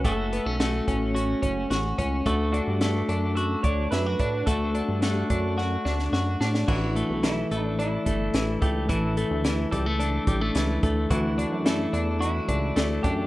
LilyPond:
<<
  \new Staff \with { instrumentName = "Clean electric guitar" } { \time 4/4 \key a \mixolydian \tempo 4 = 108 a'4 fis'4 cis'4 r4 | r8 fis'4. a'8 cis''8 b'4 | a'4 fis'4 fis'4 r4 | fis'4 e'4 e'4. g'8 |
a'4. a'2 r8 | fis'4 e'4 e'4. g'8 | }
  \new Staff \with { instrumentName = "Clean electric guitar" } { \time 4/4 \key a \mixolydian <a cis' fis'>8 b16 cis'16 a8 cis'8 fis'8 cis'8 fis'8 cis'8 | <a fis'>8 d'8 a8 d'8 fis'8 d'8 e'16 fis'16 d'8 | <a fis'>8 d'8 a8 d'8 fis'8 d'8 fis'8 d'8 | e8 a8 e8 a8 d'8 a8 e8 a8 |
e8 a8 e8 g16 a16 d'8 g16 a16 e8 a8 | e8 d'8 a8 d'8 fis'8 d'8 a8 d'8 | }
  \new Staff \with { instrumentName = "Analog synth bass" } { \clef bass \time 4/4 \key a \mixolydian fis,,8. b,,8. a,,4 fis,,8 a,,8 cis,8 | d,8. g,8. fis,4 d,8 fis,8 a,8 | d,8. g,8. fis,4 d,8 fis,8 a,8 | a,,8. b,,8. a,,4 g,,8 a,,8 cis,8 |
a,,8. d,8. cis,4 a,,8 cis,8 d,8 | d,8. fis,8. e,4 cis,8 d,8 fis,8 | }
  \new DrumStaff \with { instrumentName = "Drums" } \drummode { \time 4/4 <hh bd>8 hh8 <hh sn>8 <hh bd>8 hh8 <hh bd>8 <hh sn>8 <hh bd>8 | <hh bd>8 hh8 <hh sn>8 hh8 hh8 <hh bd>8 <hh sn>8 <hh bd>8 | <hh bd>8 hh8 <hh sn>8 <hh bd>8 sn8 sn16 sn16 sn8 sn16 sn16 | <cymc bd>8 hh8 <hh sn>8 hh8 hh8 <hh bd>8 <hh sn>8 <hh bd>8 |
<hh bd>8 hh8 <hh sn>8 <hh bd>8 hh8 <hh bd>8 <hh sn>8 <hh bd>8 | <hh bd>8 hh8 <hh sn>8 hh8 hh8 <hh bd>8 <hh sn>8 <hh bd>8 | }
>>